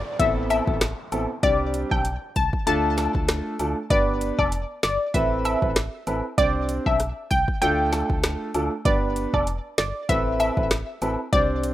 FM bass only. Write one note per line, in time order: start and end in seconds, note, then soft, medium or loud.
0.20 0.61 A1 loud
0.67 0.94 A1 loud
1.12 1.27 A1 medium
1.43 1.85 C2 loud
1.91 2.18 B1 loud
2.36 2.51 C2 loud
2.67 3.08 D2 loud
3.15 3.42 D2 medium
3.60 3.75 D2 loud
3.90 4.32 G1 loud
4.39 4.65 F1 loud
4.83 4.98 G1 medium
5.14 5.56 A1 loud
5.62 5.89 A1 loud
6.07 6.22 A1 medium
6.38 6.80 C2 loud
6.86 7.13 B1 loud
7.31 7.46 C2 medium
7.62 8.03 D2 loud
8.10 8.37 D2 medium
8.55 8.69 D2 medium
8.85 9.27 G1 loud
9.34 9.60 F1 loud
9.78 9.93 G1 medium
10.09 10.51 A1 loud
10.57 10.84 A1 loud
11.02 11.17 A1 medium
11.33 11.74 C2 loud